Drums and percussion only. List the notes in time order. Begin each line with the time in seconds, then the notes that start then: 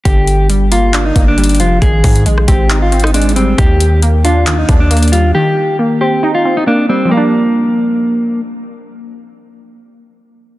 0.05 kick, closed hi-hat
0.27 closed hi-hat
0.50 closed hi-hat
0.72 closed hi-hat
0.94 clap, closed hi-hat
1.16 kick, closed hi-hat
1.38 closed hi-hat
1.44 closed hi-hat
1.49 closed hi-hat
1.55 closed hi-hat
1.60 closed hi-hat
1.82 kick, closed hi-hat
2.04 kick, closed hi-hat, open hi-hat
2.16 closed hi-hat
2.26 closed hi-hat
2.38 cross-stick
2.48 kick, closed hi-hat
2.70 clap, closed hi-hat
2.92 closed hi-hat
3.00 closed hi-hat
3.04 cross-stick, closed hi-hat
3.14 closed hi-hat
3.22 closed hi-hat
3.29 closed hi-hat
3.36 closed hi-hat
3.58 kick, closed hi-hat
3.80 closed hi-hat
4.03 closed hi-hat
4.25 closed hi-hat
4.47 clap, closed hi-hat
4.69 kick, closed hi-hat
4.91 closed hi-hat
4.97 closed hi-hat
5.03 closed hi-hat
5.08 closed hi-hat
5.13 closed hi-hat